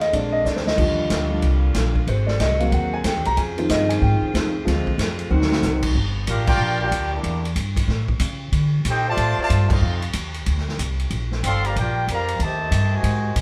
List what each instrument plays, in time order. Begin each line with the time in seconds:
Already playing: upright bass D#2, saxophone section D#3 G#3 C4 F4
0.01 grand piano D#5, snare, ride
0.12 upright bass A#1, saxophone section D3 A#3, grand piano G#3 C4 D4 D5, kick, ride
0.32 grand piano D#5
0.44 upright bass D2, grand piano D5, snare, hi-hat pedal
0.56 grand piano C5, snare
0.67 grand piano D#5, snare
0.76 upright bass D#2, saxophone section D3 G3 A#3 F4, grand piano D3 F3 G3, kick, crash
1.10 upright bass D2, kick, snare, hi-hat pedal, ride
1.30 grand piano F3 G3 D4
1.42 upright bass C2, kick, ride
1.74 upright bass A#1, kick, snare, hi-hat pedal, ride
1.95 kick
2.07 upright bass G#1, saxophone section C4 F#4 G#4, grand piano C5, kick, ride
2.27 grand piano D5, snare
2.40 upright bass C2, grand piano D#5, kick, snare, hi-hat pedal, ride
2.59 grand piano F#3 A#3 C4 F5, ride
2.72 upright bass D#2, grand piano F#5, kick, ride
2.94 grand piano G#5
3.04 upright bass E2, grand piano G5, kick, snare, hi-hat pedal, ride
3.16 upright bass D#2
3.25 upright bass C2, grand piano A#5, ride
3.36 upright bass F2, saxophone section C#3 F4, grand piano G#5, kick, ride
3.57 grand piano D#3 F3 C4 C5, ride
3.69 upright bass G2, grand piano D#5, kick, snare, hi-hat pedal, ride
3.89 grand piano G#5, ride
4.02 upright bass G#2, grand piano G5, kick
4.22 muted upright bass stroke
4.33 upright bass D#2, grand piano D#3 F3 C4, kick, snare, hi-hat pedal, ride
4.65 upright bass D2, saxophone section D3 F4, grand piano F3 G#3 C4, kick, snare, ride
4.87 kick
4.98 upright bass F2, kick, snare, hi-hat pedal, ride
5.19 ride
5.29 upright bass D2, grand piano D#3 F#3 C4, saxophone section D#3 C4 D4 F#4
5.41 snare
5.52 snare
5.62 upright bass C2, snare, hi-hat pedal
5.83 kick, crash
5.95 upright bass G1, kick
6.26 upright bass A1, trombone section A#3 D4 F4, trumpet section D4 G4 A#4 F5, kick, hi-hat pedal, ride
6.46 trombone section A#3 D4 G4, trumpet section F4 A#4 D5 G5, kick, crash
6.58 upright bass A#1
6.81 trombone section A#3 D4 G4, trumpet section F4 A#4 D5 G5
6.91 upright bass D2, kick, hi-hat pedal, ride
7.14 trombone section G3 A#3 D4, trumpet section A#3 E4 G4 D5
7.23 upright bass E2, kick, ride
7.45 ride
7.56 upright bass G2, kick, hi-hat pedal, ride
7.76 kick, ride
7.88 upright bass A2, kick, snare
8.08 kick
8.19 upright bass C#3, kick, hi-hat pedal, ride
8.52 upright bass D3, kick, ride
8.85 upright bass A#2, trombone section G4, kick, hi-hat pedal, ride
8.89 trumpet section D#4 A4 C5 G5
9.06 trombone section C3 F3 A3, trumpet section F4 D5 A5
9.11 trumpet section C5
9.17 upright bass A2, kick, ride
9.37 trombone section C3 F3 A3, muted upright bass stroke
9.42 trumpet section F4 C5 D5 A5
9.49 upright bass G2, kick, hi-hat pedal, ride
9.69 trombone section A3 C4 F4, trumpet section D#4, kick, crash
9.73 trumpet section A4 C5 F5
9.81 upright bass F2
10.02 ride
10.13 upright bass D#2, kick, hi-hat pedal, ride
10.34 ride
10.46 upright bass D2, kick, ride
10.58 snare
10.68 snare
10.79 upright bass C2, kick, hi-hat pedal, ride
10.99 ride
11.10 upright bass A#1, kick, ride
11.32 snare
11.43 upright bass G1, trombone section C4, trumpet section A4 F5 C6, kick, hi-hat pedal, ride
11.47 trumpet section D5
11.65 trombone section F3 G3 A#3, trumpet section G4 D5 F5 A#5, ride
11.76 upright bass A#1, trombone section G3 D4 G4, trumpet section A#4 G5, kick, ride
11.80 trumpet section F4 D5
12.07 upright bass F2, trombone section F3 G3 A#3, kick, hi-hat pedal, ride
12.13 trumpet section G4 D5 F5 A#5
12.28 ride
12.39 upright bass D#2, trombone section C3 D#3 A3, trumpet section G4 C5 A5, kick, ride
12.44 trumpet section D#5
12.71 upright bass G2, kick, hi-hat pedal, ride
12.95 trombone section C3 D#3 G#3, trumpet section F#4 C5 D#5 G#5
13.03 upright bass G#2, kick, ride
13.36 upright bass A#2, kick, hi-hat pedal, ride